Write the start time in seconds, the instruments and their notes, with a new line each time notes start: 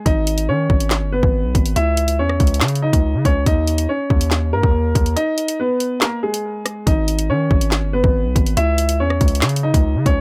0.06 808-style bass G#1, upright piano D#4 D#5, kick, closed hi-hat
0.27 closed hi-hat
0.38 closed hi-hat
0.49 808-style bass D#3, upright piano C#4 C#5
0.70 808-style bass G#1, kick
0.80 closed hi-hat
0.91 snare, clap
1.02 808-style bass G1
1.12 upright piano B3 B4
1.23 808-style bass G#1, kick
1.44 808-style bass B1
1.55 808-style bass G#1, kick, closed hi-hat
1.66 closed hi-hat
1.76 808-style bass C#2, upright piano E4 E5, closed hi-hat
1.97 closed hi-hat
2.08 closed hi-hat
2.19 808-style bass E2, upright piano C#4 C#5
2.29 cross-stick
2.40 808-style bass C#2, kick, closed hi-hat
2.47 closed hi-hat
2.54 closed hi-hat
2.61 808-style bass C#3, snare, clap, closed hi-hat
2.68 closed hi-hat
2.75 closed hi-hat
2.82 upright piano D#4 D#5
2.93 808-style bass C#2, kick, closed hi-hat
3.14 808-style bass C#3
3.25 808-style bass C#2, upright piano C#4 C#5, kick, closed hi-hat
3.46 808-style bass D#2, upright piano D#4 D#5, kick, closed hi-hat
3.67 closed hi-hat
3.78 closed hi-hat
3.89 upright piano C#4 C#5
4.10 808-style bass D#2, kick
4.21 closed hi-hat
4.31 snare, clap
4.53 808-style bass G2, upright piano A#3 A#4
4.63 808-style bass D#2, kick
4.95 808-style bass D#2, kick, closed hi-hat
5.06 closed hi-hat
5.16 upright piano D#4 D#5, closed hi-hat
5.38 closed hi-hat
5.48 closed hi-hat
5.60 upright piano B3 B4
5.80 closed hi-hat
6.01 upright piano A#3 A#4, snare, clap, closed hi-hat
6.23 upright piano G#3 G#4
6.34 closed hi-hat
6.66 cross-stick, closed hi-hat
6.87 808-style bass G#1, upright piano D#4 D#5, kick, closed hi-hat
7.08 closed hi-hat
7.19 closed hi-hat
7.29 808-style bass D#3, upright piano C#4 C#5
7.51 808-style bass G#1, kick
7.61 closed hi-hat
7.72 snare, clap
7.83 808-style bass G1
7.93 upright piano B3 B4
8.04 808-style bass G#1, kick
8.25 808-style bass B1
8.36 808-style bass G#1, kick, closed hi-hat
8.46 closed hi-hat
8.57 808-style bass C#2, upright piano E4 E5, closed hi-hat
8.78 closed hi-hat
8.89 closed hi-hat
9.00 808-style bass E2, upright piano C#4 C#5
9.10 cross-stick
9.21 808-style bass C#2, kick, closed hi-hat
9.28 closed hi-hat
9.35 closed hi-hat
9.42 808-style bass C#3, snare, clap, closed hi-hat
9.49 closed hi-hat
9.56 closed hi-hat
9.63 upright piano D#4 D#5
9.74 808-style bass C#2, kick, closed hi-hat
9.95 808-style bass C#3
10.06 808-style bass C#2, upright piano C#4 C#5, kick, closed hi-hat